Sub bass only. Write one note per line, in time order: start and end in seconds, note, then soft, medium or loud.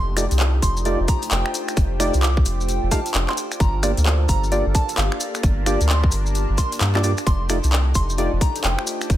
0.00 0.27 F1 loud
0.31 0.60 C2 medium
0.62 0.96 F1 medium
1.00 1.07 F1 medium
1.31 1.43 F1 medium
1.77 2.10 F1 loud
2.14 2.43 C2 medium
2.46 2.79 F1 medium
2.83 2.90 F1 medium
3.14 3.26 F1 medium
3.60 3.93 G1 loud
3.97 4.27 D2 medium
4.29 4.62 G1 medium
4.66 4.73 G1 medium
4.98 5.09 G1 medium
5.43 5.77 G1 loud
5.81 6.10 D2 loud
6.12 6.45 G1 medium
6.50 6.56 G1 medium
6.81 7.14 G2 medium
7.27 7.60 F1 medium
7.64 7.93 C2 medium
7.95 8.29 F1 medium
8.33 8.40 F1 medium
8.64 8.76 F1 medium
9.10 9.17 F1 loud